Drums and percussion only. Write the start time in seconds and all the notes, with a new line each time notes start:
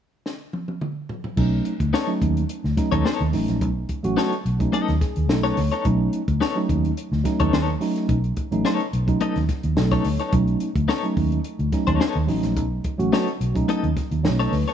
0.26 snare
0.53 high tom
0.68 high tom
0.81 mid tom
1.09 floor tom
1.24 floor tom
1.37 kick, crash
1.65 closed hi-hat
1.80 kick, closed hi-hat
1.94 snare
2.22 kick, closed hi-hat
2.37 closed hi-hat
2.49 closed hi-hat
2.65 snare
2.77 kick, snare, closed hi-hat
2.92 kick, closed hi-hat
3.06 snare
3.20 closed hi-hat
3.33 snare, open hi-hat
3.48 snare, closed hi-hat
3.61 kick, closed hi-hat
3.89 kick, closed hi-hat
4.04 closed hi-hat
4.17 snare
4.33 closed hi-hat
4.46 closed hi-hat
4.60 kick, closed hi-hat
4.73 closed hi-hat
4.88 snare, closed hi-hat
5.01 kick, snare, closed hi-hat
5.16 closed hi-hat
5.29 snare
5.44 snare, closed hi-hat
5.57 snare, open hi-hat
5.72 snare, closed hi-hat
5.85 kick, closed hi-hat
6.13 closed hi-hat
6.28 kick, closed hi-hat
6.41 snare
6.69 kick, closed hi-hat
6.85 closed hi-hat
6.97 closed hi-hat
7.12 snare
7.25 kick, snare, closed hi-hat
7.40 kick, closed hi-hat
7.53 snare
7.81 snare, open hi-hat
7.96 snare, closed hi-hat
8.09 kick, closed hi-hat
8.24 closed hi-hat
8.37 kick, closed hi-hat
8.52 closed hi-hat
8.65 snare
8.80 closed hi-hat
8.93 closed hi-hat
9.08 kick, closed hi-hat
9.21 closed hi-hat
9.36 snare, closed hi-hat
9.49 kick, snare, closed hi-hat
9.63 closed hi-hat
9.77 snare
9.91 kick, snare, closed hi-hat
10.04 snare, open hi-hat
10.19 snare, closed hi-hat
10.33 kick, closed hi-hat
10.47 closed hi-hat
10.60 closed hi-hat
10.75 kick, closed hi-hat
10.89 snare
11.04 closed hi-hat
11.17 kick, open hi-hat
11.32 closed hi-hat
11.44 closed hi-hat
11.59 closed hi-hat
11.72 kick, snare, closed hi-hat
11.87 kick, closed hi-hat
12.01 snare
12.28 snare, open hi-hat
12.43 snare, closed hi-hat
12.57 kick, closed hi-hat
12.84 kick, closed hi-hat
13.00 closed hi-hat
13.13 snare
13.28 closed hi-hat
13.41 closed hi-hat
13.55 kick, closed hi-hat
13.69 closed hi-hat
13.84 closed hi-hat
13.97 kick, snare, closed hi-hat
14.11 closed hi-hat
14.25 snare
14.40 snare, closed hi-hat
14.53 snare, open hi-hat
14.67 snare, closed hi-hat